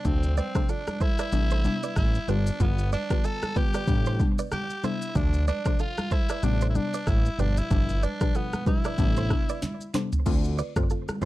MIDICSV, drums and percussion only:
0, 0, Header, 1, 2, 480
1, 0, Start_track
1, 0, Key_signature, 0, "minor"
1, 0, Tempo, 638298
1, 37, Time_signature, 4, 2, 24, 8
1, 8461, End_track
2, 0, Start_track
2, 0, Title_t, "Drums"
2, 36, Note_on_c, 9, 82, 77
2, 37, Note_on_c, 9, 36, 109
2, 40, Note_on_c, 9, 64, 72
2, 112, Note_off_c, 9, 36, 0
2, 112, Note_off_c, 9, 82, 0
2, 115, Note_off_c, 9, 64, 0
2, 174, Note_on_c, 9, 82, 59
2, 249, Note_off_c, 9, 82, 0
2, 280, Note_on_c, 9, 82, 60
2, 281, Note_on_c, 9, 63, 62
2, 355, Note_off_c, 9, 82, 0
2, 356, Note_off_c, 9, 63, 0
2, 414, Note_on_c, 9, 36, 98
2, 414, Note_on_c, 9, 82, 79
2, 416, Note_on_c, 9, 37, 94
2, 489, Note_off_c, 9, 82, 0
2, 490, Note_off_c, 9, 36, 0
2, 491, Note_off_c, 9, 37, 0
2, 517, Note_on_c, 9, 82, 64
2, 593, Note_off_c, 9, 82, 0
2, 655, Note_on_c, 9, 82, 52
2, 659, Note_on_c, 9, 37, 91
2, 663, Note_on_c, 9, 63, 75
2, 731, Note_off_c, 9, 82, 0
2, 734, Note_off_c, 9, 37, 0
2, 738, Note_off_c, 9, 63, 0
2, 756, Note_on_c, 9, 82, 46
2, 757, Note_on_c, 9, 36, 92
2, 757, Note_on_c, 9, 63, 81
2, 831, Note_off_c, 9, 82, 0
2, 832, Note_off_c, 9, 36, 0
2, 832, Note_off_c, 9, 63, 0
2, 891, Note_on_c, 9, 82, 92
2, 896, Note_on_c, 9, 37, 82
2, 966, Note_off_c, 9, 82, 0
2, 971, Note_off_c, 9, 37, 0
2, 994, Note_on_c, 9, 82, 75
2, 1069, Note_off_c, 9, 82, 0
2, 1132, Note_on_c, 9, 82, 59
2, 1207, Note_off_c, 9, 82, 0
2, 1236, Note_on_c, 9, 82, 48
2, 1240, Note_on_c, 9, 63, 82
2, 1312, Note_off_c, 9, 82, 0
2, 1315, Note_off_c, 9, 63, 0
2, 1377, Note_on_c, 9, 82, 84
2, 1452, Note_off_c, 9, 82, 0
2, 1476, Note_on_c, 9, 36, 97
2, 1476, Note_on_c, 9, 37, 93
2, 1477, Note_on_c, 9, 82, 74
2, 1484, Note_on_c, 9, 63, 67
2, 1484, Note_on_c, 9, 64, 68
2, 1551, Note_off_c, 9, 36, 0
2, 1551, Note_off_c, 9, 37, 0
2, 1552, Note_off_c, 9, 82, 0
2, 1559, Note_off_c, 9, 63, 0
2, 1559, Note_off_c, 9, 64, 0
2, 1616, Note_on_c, 9, 82, 55
2, 1691, Note_off_c, 9, 82, 0
2, 1717, Note_on_c, 9, 82, 49
2, 1718, Note_on_c, 9, 63, 67
2, 1792, Note_off_c, 9, 82, 0
2, 1793, Note_off_c, 9, 63, 0
2, 1854, Note_on_c, 9, 82, 90
2, 1929, Note_off_c, 9, 82, 0
2, 1955, Note_on_c, 9, 82, 83
2, 1956, Note_on_c, 9, 36, 111
2, 1960, Note_on_c, 9, 64, 72
2, 2031, Note_off_c, 9, 82, 0
2, 2032, Note_off_c, 9, 36, 0
2, 2035, Note_off_c, 9, 64, 0
2, 2093, Note_on_c, 9, 82, 62
2, 2169, Note_off_c, 9, 82, 0
2, 2200, Note_on_c, 9, 63, 57
2, 2200, Note_on_c, 9, 82, 63
2, 2275, Note_off_c, 9, 63, 0
2, 2275, Note_off_c, 9, 82, 0
2, 2333, Note_on_c, 9, 82, 76
2, 2334, Note_on_c, 9, 36, 100
2, 2335, Note_on_c, 9, 37, 98
2, 2408, Note_off_c, 9, 82, 0
2, 2409, Note_off_c, 9, 36, 0
2, 2411, Note_off_c, 9, 37, 0
2, 2437, Note_on_c, 9, 82, 69
2, 2513, Note_off_c, 9, 82, 0
2, 2575, Note_on_c, 9, 82, 54
2, 2578, Note_on_c, 9, 37, 97
2, 2583, Note_on_c, 9, 63, 73
2, 2650, Note_off_c, 9, 82, 0
2, 2653, Note_off_c, 9, 37, 0
2, 2658, Note_off_c, 9, 63, 0
2, 2676, Note_on_c, 9, 36, 89
2, 2676, Note_on_c, 9, 82, 49
2, 2677, Note_on_c, 9, 63, 77
2, 2751, Note_off_c, 9, 82, 0
2, 2752, Note_off_c, 9, 36, 0
2, 2752, Note_off_c, 9, 63, 0
2, 2811, Note_on_c, 9, 82, 92
2, 2816, Note_on_c, 9, 37, 86
2, 2887, Note_off_c, 9, 82, 0
2, 2891, Note_off_c, 9, 37, 0
2, 2914, Note_on_c, 9, 36, 95
2, 2914, Note_on_c, 9, 82, 69
2, 2989, Note_off_c, 9, 82, 0
2, 2990, Note_off_c, 9, 36, 0
2, 3052, Note_on_c, 9, 82, 60
2, 3127, Note_off_c, 9, 82, 0
2, 3156, Note_on_c, 9, 36, 89
2, 3156, Note_on_c, 9, 82, 49
2, 3160, Note_on_c, 9, 63, 80
2, 3231, Note_off_c, 9, 36, 0
2, 3231, Note_off_c, 9, 82, 0
2, 3235, Note_off_c, 9, 63, 0
2, 3297, Note_on_c, 9, 82, 91
2, 3372, Note_off_c, 9, 82, 0
2, 3396, Note_on_c, 9, 37, 87
2, 3397, Note_on_c, 9, 82, 76
2, 3404, Note_on_c, 9, 63, 68
2, 3404, Note_on_c, 9, 64, 67
2, 3472, Note_off_c, 9, 37, 0
2, 3472, Note_off_c, 9, 82, 0
2, 3480, Note_off_c, 9, 63, 0
2, 3480, Note_off_c, 9, 64, 0
2, 3536, Note_on_c, 9, 82, 57
2, 3611, Note_off_c, 9, 82, 0
2, 3636, Note_on_c, 9, 82, 50
2, 3638, Note_on_c, 9, 63, 66
2, 3712, Note_off_c, 9, 82, 0
2, 3713, Note_off_c, 9, 63, 0
2, 3774, Note_on_c, 9, 82, 87
2, 3849, Note_off_c, 9, 82, 0
2, 3875, Note_on_c, 9, 82, 80
2, 3876, Note_on_c, 9, 36, 110
2, 3879, Note_on_c, 9, 64, 68
2, 3950, Note_off_c, 9, 82, 0
2, 3951, Note_off_c, 9, 36, 0
2, 3954, Note_off_c, 9, 64, 0
2, 4013, Note_on_c, 9, 82, 62
2, 4088, Note_off_c, 9, 82, 0
2, 4118, Note_on_c, 9, 82, 62
2, 4121, Note_on_c, 9, 63, 60
2, 4193, Note_off_c, 9, 82, 0
2, 4196, Note_off_c, 9, 63, 0
2, 4252, Note_on_c, 9, 82, 80
2, 4254, Note_on_c, 9, 36, 102
2, 4254, Note_on_c, 9, 37, 97
2, 4327, Note_off_c, 9, 82, 0
2, 4329, Note_off_c, 9, 36, 0
2, 4329, Note_off_c, 9, 37, 0
2, 4356, Note_on_c, 9, 82, 66
2, 4431, Note_off_c, 9, 82, 0
2, 4494, Note_on_c, 9, 82, 54
2, 4497, Note_on_c, 9, 37, 94
2, 4503, Note_on_c, 9, 63, 77
2, 4569, Note_off_c, 9, 82, 0
2, 4573, Note_off_c, 9, 37, 0
2, 4578, Note_off_c, 9, 63, 0
2, 4596, Note_on_c, 9, 36, 91
2, 4596, Note_on_c, 9, 82, 49
2, 4597, Note_on_c, 9, 63, 80
2, 4671, Note_off_c, 9, 36, 0
2, 4671, Note_off_c, 9, 82, 0
2, 4672, Note_off_c, 9, 63, 0
2, 4731, Note_on_c, 9, 82, 93
2, 4735, Note_on_c, 9, 37, 86
2, 4806, Note_off_c, 9, 82, 0
2, 4810, Note_off_c, 9, 37, 0
2, 4834, Note_on_c, 9, 82, 69
2, 4909, Note_off_c, 9, 82, 0
2, 4971, Note_on_c, 9, 82, 63
2, 5046, Note_off_c, 9, 82, 0
2, 5076, Note_on_c, 9, 82, 49
2, 5080, Note_on_c, 9, 63, 86
2, 5151, Note_off_c, 9, 82, 0
2, 5155, Note_off_c, 9, 63, 0
2, 5217, Note_on_c, 9, 82, 91
2, 5292, Note_off_c, 9, 82, 0
2, 5316, Note_on_c, 9, 36, 101
2, 5316, Note_on_c, 9, 37, 93
2, 5316, Note_on_c, 9, 82, 75
2, 5324, Note_on_c, 9, 63, 71
2, 5324, Note_on_c, 9, 64, 71
2, 5391, Note_off_c, 9, 36, 0
2, 5391, Note_off_c, 9, 37, 0
2, 5391, Note_off_c, 9, 82, 0
2, 5399, Note_off_c, 9, 63, 0
2, 5399, Note_off_c, 9, 64, 0
2, 5456, Note_on_c, 9, 82, 56
2, 5531, Note_off_c, 9, 82, 0
2, 5557, Note_on_c, 9, 63, 65
2, 5557, Note_on_c, 9, 82, 47
2, 5632, Note_off_c, 9, 63, 0
2, 5632, Note_off_c, 9, 82, 0
2, 5694, Note_on_c, 9, 82, 87
2, 5769, Note_off_c, 9, 82, 0
2, 5795, Note_on_c, 9, 82, 79
2, 5796, Note_on_c, 9, 36, 108
2, 5799, Note_on_c, 9, 64, 70
2, 5870, Note_off_c, 9, 82, 0
2, 5871, Note_off_c, 9, 36, 0
2, 5874, Note_off_c, 9, 64, 0
2, 5933, Note_on_c, 9, 82, 61
2, 6009, Note_off_c, 9, 82, 0
2, 6039, Note_on_c, 9, 82, 63
2, 6040, Note_on_c, 9, 63, 57
2, 6114, Note_off_c, 9, 82, 0
2, 6115, Note_off_c, 9, 63, 0
2, 6172, Note_on_c, 9, 82, 76
2, 6174, Note_on_c, 9, 36, 97
2, 6174, Note_on_c, 9, 37, 99
2, 6247, Note_off_c, 9, 82, 0
2, 6249, Note_off_c, 9, 36, 0
2, 6249, Note_off_c, 9, 37, 0
2, 6277, Note_on_c, 9, 82, 65
2, 6352, Note_off_c, 9, 82, 0
2, 6414, Note_on_c, 9, 82, 53
2, 6418, Note_on_c, 9, 37, 91
2, 6422, Note_on_c, 9, 63, 77
2, 6490, Note_off_c, 9, 82, 0
2, 6493, Note_off_c, 9, 37, 0
2, 6498, Note_off_c, 9, 63, 0
2, 6515, Note_on_c, 9, 63, 81
2, 6516, Note_on_c, 9, 36, 91
2, 6516, Note_on_c, 9, 82, 45
2, 6590, Note_off_c, 9, 63, 0
2, 6591, Note_off_c, 9, 36, 0
2, 6591, Note_off_c, 9, 82, 0
2, 6651, Note_on_c, 9, 82, 93
2, 6655, Note_on_c, 9, 37, 85
2, 6726, Note_off_c, 9, 82, 0
2, 6731, Note_off_c, 9, 37, 0
2, 6753, Note_on_c, 9, 82, 71
2, 6754, Note_on_c, 9, 36, 92
2, 6829, Note_off_c, 9, 82, 0
2, 6830, Note_off_c, 9, 36, 0
2, 6892, Note_on_c, 9, 82, 65
2, 6967, Note_off_c, 9, 82, 0
2, 6996, Note_on_c, 9, 36, 88
2, 6996, Note_on_c, 9, 37, 93
2, 6996, Note_on_c, 9, 82, 47
2, 6999, Note_on_c, 9, 63, 85
2, 7071, Note_off_c, 9, 36, 0
2, 7072, Note_off_c, 9, 37, 0
2, 7072, Note_off_c, 9, 82, 0
2, 7074, Note_off_c, 9, 63, 0
2, 7137, Note_on_c, 9, 82, 89
2, 7212, Note_off_c, 9, 82, 0
2, 7236, Note_on_c, 9, 38, 55
2, 7237, Note_on_c, 9, 82, 74
2, 7244, Note_on_c, 9, 63, 67
2, 7244, Note_on_c, 9, 64, 67
2, 7311, Note_off_c, 9, 38, 0
2, 7312, Note_off_c, 9, 82, 0
2, 7319, Note_off_c, 9, 63, 0
2, 7319, Note_off_c, 9, 64, 0
2, 7376, Note_on_c, 9, 82, 59
2, 7451, Note_off_c, 9, 82, 0
2, 7476, Note_on_c, 9, 38, 93
2, 7477, Note_on_c, 9, 82, 49
2, 7478, Note_on_c, 9, 63, 67
2, 7551, Note_off_c, 9, 38, 0
2, 7552, Note_off_c, 9, 82, 0
2, 7553, Note_off_c, 9, 63, 0
2, 7614, Note_on_c, 9, 82, 88
2, 7615, Note_on_c, 9, 43, 92
2, 7689, Note_off_c, 9, 82, 0
2, 7691, Note_off_c, 9, 43, 0
2, 7716, Note_on_c, 9, 36, 109
2, 7716, Note_on_c, 9, 49, 95
2, 7716, Note_on_c, 9, 82, 82
2, 7720, Note_on_c, 9, 64, 68
2, 7791, Note_off_c, 9, 36, 0
2, 7791, Note_off_c, 9, 49, 0
2, 7791, Note_off_c, 9, 82, 0
2, 7795, Note_off_c, 9, 64, 0
2, 7854, Note_on_c, 9, 82, 60
2, 7929, Note_off_c, 9, 82, 0
2, 7959, Note_on_c, 9, 82, 64
2, 8034, Note_off_c, 9, 82, 0
2, 8092, Note_on_c, 9, 82, 76
2, 8093, Note_on_c, 9, 45, 89
2, 8094, Note_on_c, 9, 36, 101
2, 8095, Note_on_c, 9, 37, 101
2, 8168, Note_off_c, 9, 45, 0
2, 8168, Note_off_c, 9, 82, 0
2, 8169, Note_off_c, 9, 36, 0
2, 8170, Note_off_c, 9, 37, 0
2, 8196, Note_on_c, 9, 82, 68
2, 8272, Note_off_c, 9, 82, 0
2, 8335, Note_on_c, 9, 82, 56
2, 8338, Note_on_c, 9, 37, 94
2, 8343, Note_on_c, 9, 63, 75
2, 8410, Note_off_c, 9, 82, 0
2, 8413, Note_off_c, 9, 37, 0
2, 8418, Note_off_c, 9, 63, 0
2, 8436, Note_on_c, 9, 36, 89
2, 8436, Note_on_c, 9, 63, 83
2, 8436, Note_on_c, 9, 82, 48
2, 8461, Note_off_c, 9, 36, 0
2, 8461, Note_off_c, 9, 63, 0
2, 8461, Note_off_c, 9, 82, 0
2, 8461, End_track
0, 0, End_of_file